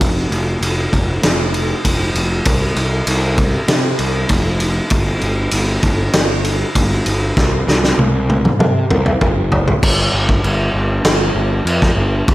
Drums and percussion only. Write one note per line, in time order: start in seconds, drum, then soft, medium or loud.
0.01 kick loud
0.01 ride medium
0.32 ride medium
0.62 ride medium
0.93 kick medium
0.93 ride medium
1.23 snare loud
1.23 ride medium
1.54 ride medium
1.85 kick medium
1.85 ride loud
2.15 ride medium
2.45 kick loud
2.45 ride loud
2.76 ride medium
3.07 ride loud
3.38 kick medium
3.38 ride medium
3.68 snare loud
3.68 ride medium
3.99 ride medium
4.29 kick medium
4.29 ride medium
4.60 ride medium
4.90 kick loud
4.90 ride loud
5.21 ride medium
5.51 ride medium
5.83 kick medium
5.83 ride medium
6.13 snare loud
6.13 ride medium
6.45 ride medium
6.75 kick medium
6.75 ride medium
7.06 ride medium
7.37 kick loud
7.37 snare medium
7.68 snare medium
7.84 snare medium
7.99 high tom medium
8.30 high tom medium
8.45 mid tom medium
8.60 mid tom medium
8.91 mid tom medium
9.06 mid tom medium
9.21 kick medium
9.21 mid tom loud
9.52 floor tom loud
9.68 floor tom medium
9.83 kick loud
9.83 crash loud
9.83 crash medium
10.29 kick medium
10.44 crash medium
11.05 snare loud
11.05 crash medium
11.67 crash medium
11.82 kick medium
11.82 snare soft
12.28 kick loud
12.28 crash medium